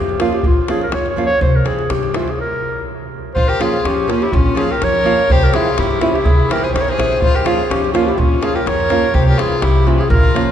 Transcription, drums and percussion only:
0.09 davul high soft
0.20 davul high medium
0.33 davul high soft
0.43 davul low loud
0.68 davul high medium
0.81 davul high soft
0.92 davul high medium
1.06 davul high soft
1.30 davul high soft
1.42 davul low medium
1.66 davul high medium
1.79 davul high soft
1.90 davul high medium
2.03 davul high soft
2.14 davul high medium
2.28 davul high soft
3.36 davul low medium
3.61 davul high medium
3.73 davul high soft
3.85 davul high medium
4.10 davul high medium
4.22 davul high soft
4.32 davul low medium
4.57 davul high medium
4.71 davul high soft
4.82 davul high medium
4.95 davul high soft
5.19 davul high soft
5.30 davul low loud
5.54 davul high medium
5.67 davul high soft
5.78 davul high medium
5.91 davul high soft
6.01 davul high medium
6.15 davul high soft
6.26 davul low loud
6.40 davul high soft
6.51 davul high medium
6.64 davul high soft
6.76 davul high medium
6.88 davul high soft
7.00 davul high medium
7.13 davul high soft
7.22 davul low loud
7.46 davul high medium
7.59 davul high soft
7.71 davul high medium
7.84 davul high soft
7.95 davul high medium
8.09 davul high soft
8.20 davul low medium
8.43 davul high medium
8.56 davul high soft
8.67 davul high medium
8.80 davul high soft
8.90 davul high medium
9.03 davul high soft
9.15 davul low medium
9.39 davul high medium
9.52 davul high soft
9.62 davul high medium
9.76 davul high soft
10.01 davul high soft
10.12 davul low loud
10.25 davul high soft
10.36 davul high medium

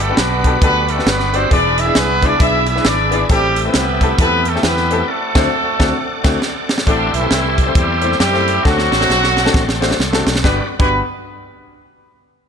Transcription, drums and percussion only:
0.17 snare loud
0.17 closed hi-hat medium
0.44 kick medium
0.44 closed hi-hat medium
0.62 kick loud
0.62 closed hi-hat loud
0.88 closed hi-hat medium
0.99 snare soft
1.07 snare loud
1.07 closed hi-hat medium
1.20 snare soft
1.34 closed hi-hat medium
1.51 kick medium
1.51 closed hi-hat loud
1.78 closed hi-hat medium
1.95 snare loud
1.95 closed hi-hat medium
2.23 kick medium
2.23 closed hi-hat medium
2.40 kick loud
2.40 closed hi-hat loud
2.66 closed hi-hat medium
2.77 snare soft
2.85 snare loud
2.85 closed hi-hat medium
3.12 closed hi-hat medium
3.29 kick loud
3.29 closed hi-hat medium
3.56 closed hi-hat medium
3.74 snare loud
3.74 closed hi-hat medium
4.01 kick medium
4.01 closed hi-hat medium
4.19 kick loud
4.19 closed hi-hat loud
4.45 closed hi-hat medium
4.56 snare soft
4.63 snare loud
4.63 closed hi-hat medium
4.77 snare soft
4.91 closed hi-hat medium
5.35 kick loud
5.35 snare loud
5.35 crash medium
5.80 kick loud
5.80 snare loud
6.24 kick loud
6.24 snare loud
6.24 crash medium
6.42 snare medium
6.69 snare loud
6.78 snare loud
6.87 kick loud
6.87 closed hi-hat medium
7.14 closed hi-hat medium
7.31 snare loud
7.31 closed hi-hat medium
7.58 kick medium
7.58 closed hi-hat medium
7.75 kick loud
7.75 closed hi-hat loud
8.02 closed hi-hat medium
8.12 snare soft
8.20 snare loud
8.20 closed hi-hat medium
8.34 snare soft
8.48 closed hi-hat medium
8.65 kick loud
8.65 snare medium
8.78 snare medium
8.92 snare medium
9.01 snare medium
9.10 snare medium
9.24 snare medium
9.37 snare medium
9.46 snare medium
9.54 kick loud
9.54 snare loud
9.69 snare medium
9.82 snare loud
9.91 snare medium
10.00 snare medium
10.13 snare loud
10.27 snare loud
10.36 snare medium
10.44 kick medium
10.44 snare medium
10.79 kick loud
10.79 crash medium

